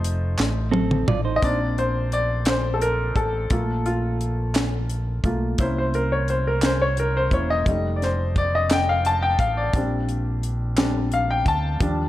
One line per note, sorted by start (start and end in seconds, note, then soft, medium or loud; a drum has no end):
0.00 0.35 F1 loud
0.00 1.38 A3 medium
0.00 1.39 D#4 medium
0.00 1.39 F4 medium
0.00 1.40 C5 medium
0.04 closed hi-hat medium
0.38 1.04 A1 medium
0.38 snare medium
0.38 clap medium
0.71 1.05 C4 medium
0.71 1.05 A4 medium
0.71 high tom medium
0.91 mid tom medium
1.08 1.40 A1 medium
1.08 1.24 F4 medium
1.08 1.24 D5 medium
1.08 mid tom medium
1.25 1.58 D#4 medium
1.25 1.58 C5 medium
1.36 1.43 D#5 medium
1.42 3.12 A#1 medium
1.42 3.47 A#3 soft
1.42 3.47 C4 soft
1.42 3.47 D4 soft
1.42 1.79 D5 medium
1.42 kick medium
1.42 closed hi-hat medium
1.78 2.14 C5 medium
1.78 closed hi-hat soft
2.12 2.48 D5 medium
2.12 closed hi-hat soft
2.45 2.74 C5 medium
2.45 snare medium
2.45 clap medium
2.45 closed hi-hat medium
2.74 2.81 A4 medium
2.81 3.14 A#4 medium
2.81 closed hi-hat soft
3.16 3.48 A1 medium
3.16 3.88 A4 medium
3.16 kick medium
3.16 closed hi-hat soft
3.50 5.20 A#1 loud
3.50 4.51 A3 soft
3.50 4.51 A#3 soft
3.50 3.84 F4 soft
3.50 kick loud
3.50 closed hi-hat medium
3.86 4.51 F4 medium
3.86 closed hi-hat soft
4.21 closed hi-hat soft
4.55 snare medium
4.55 clap medium
4.55 closed hi-hat medium
4.89 closed hi-hat soft
5.24 5.56 B1 medium
5.24 5.56 A3 soft
5.24 5.56 A#3 soft
5.24 5.56 F4 soft
5.24 kick medium
5.24 closed hi-hat soft
5.58 7.28 C2 loud
5.58 6.59 A#3 medium
5.58 6.59 C#4 soft
5.58 6.59 E4 medium
5.58 5.77 C5 medium
5.58 kick loud
5.58 closed hi-hat medium
5.78 5.83 C5 medium
5.94 6.12 A#4 medium
5.94 closed hi-hat soft
6.12 6.29 C#5 medium
6.28 6.47 C5 medium
6.28 closed hi-hat soft
6.47 6.64 A#4 medium
6.62 6.82 C5 medium
6.62 snare medium
6.62 clap medium
6.62 closed hi-hat medium
6.82 6.99 C#5 medium
6.97 7.16 A#4 medium
6.97 closed hi-hat soft
7.17 7.34 C5 medium
7.31 7.64 E1 medium
7.31 7.64 A#3 soft
7.31 7.64 C#4 soft
7.31 7.64 E4 soft
7.31 7.39 C#5 medium
7.31 kick medium
7.31 closed hi-hat soft
7.50 7.96 D#5 medium
7.66 9.35 F1 loud
7.66 8.13 G3 soft
7.66 8.14 A3 soft
7.66 8.14 D#4 medium
7.66 kick loud
7.66 closed hi-hat medium
7.96 8.02 D5 medium
8.02 8.35 C5 medium
8.02 snare soft
8.02 closed hi-hat soft
8.36 8.43 D5 medium
8.36 kick medium
8.36 closed hi-hat soft
8.55 8.72 D#5 medium
8.70 8.89 G5 medium
8.70 snare medium
8.70 clap medium
8.70 closed hi-hat medium
8.89 9.06 F5 medium
9.05 9.24 A5 medium
9.05 closed hi-hat soft
9.22 9.40 G5 medium
9.39 9.71 A1 medium
9.39 9.57 F5 medium
9.39 kick medium
9.39 closed hi-hat soft
9.57 9.89 D5 medium
9.73 11.42 A#1 medium
9.73 10.76 G3 soft
9.73 10.76 C4 soft
9.73 10.76 D4 medium
9.73 kick loud
9.73 closed hi-hat medium
10.09 closed hi-hat soft
10.43 closed hi-hat soft
10.77 11.08 G3 soft
10.77 11.08 C4 soft
10.77 11.09 D4 soft
10.77 snare medium
10.77 clap medium
10.77 closed hi-hat medium
11.12 11.30 F5 medium
11.12 closed hi-hat soft
11.30 11.47 G5 medium
11.46 11.78 D2 medium
11.46 12.09 A5 medium
11.46 kick medium
11.46 closed hi-hat soft
11.80 12.09 D#2 medium
11.80 12.09 F3 soft
11.80 12.09 G3 soft
11.80 12.09 D4 medium
11.80 kick loud
11.80 closed hi-hat medium